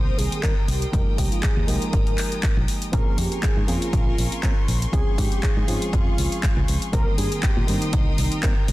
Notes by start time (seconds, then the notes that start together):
Already playing: D#3 G3 A#3 C4 G4 A#4 C5 G5 C6 D#6
0.18 C2 G#4, open hi-hat
0.32 closed hi-hat
0.43 D#3 G3 A#3 C4 A#4, kick, clap, closed hi-hat
0.67 C2 G4, open hi-hat
0.82 closed hi-hat
0.92 F1 F3 G#3 A#3 D#4 G4 A#4 A#5 D#6, kick, closed hi-hat
1.17 C2 G4, kick, open hi-hat
1.31 F4, closed hi-hat
1.42 G#4, kick, clap, closed hi-hat
1.57 D#2
1.67 C2 F3 G#3 A#3 D#4 G4 A#4, open hi-hat
1.82 closed hi-hat
1.93 G#1, kick, closed hi-hat
2.07 closed hi-hat
2.18 clap, open hi-hat
2.32 closed hi-hat
2.43 kick, clap, closed hi-hat
2.57 A#1
2.68 open hi-hat
2.82 closed hi-hat
2.92 A#1 F3 A#3 C4 C#4 G#4 A#4 G#5 C6 C#6, kick, closed hi-hat
3.18 F2 G4, open hi-hat
3.32 closed hi-hat
3.43 G#4, kick, clap, closed hi-hat
3.57 G#2
3.67 F2 F3 A#3 C4 C#4 F4 G#4, open hi-hat
3.82 closed hi-hat
3.93 A#1 F4, kick, closed hi-hat
4.18 A#1, open hi-hat
4.32 closed hi-hat
4.43 F3 A#3 C4 C#4 A#4, kick, clap, closed hi-hat
4.68 A#1, open hi-hat
4.82 closed hi-hat
4.92 C#2 F3 G#3 C4 C#4 G#4 F5, kick, closed hi-hat
5.18 G#2 G4, kick, open hi-hat
5.32 closed hi-hat
5.43 G#4, kick, clap, closed hi-hat
5.57 G#2
5.67 G#2 F3 G#3 C4 C#4 F4 G#4, open hi-hat
5.82 closed hi-hat
5.93 F2 F4, kick, closed hi-hat
6.18 C#2, open hi-hat
6.32 closed hi-hat
6.43 kick, clap, closed hi-hat
6.57 C#2
6.68 C#2, open hi-hat
6.82 closed hi-hat
6.92 C2 D#3 G3 A#3 C4 G4 A#4 G5 C6 D#6, kick, closed hi-hat
7.17 G2 G#4, open hi-hat
7.32 closed hi-hat
7.42 G4, kick, clap, closed hi-hat
7.57 A#2
7.67 G2 D#3 G3 A#3 C4 D#4 G4, open hi-hat
7.82 closed hi-hat
7.93 C2, kick, closed hi-hat
8.18 C2, open hi-hat
8.32 closed hi-hat
8.43 D#3 G3 A#3 C4 A#4, kick, clap, closed hi-hat
8.68 C2, open hi-hat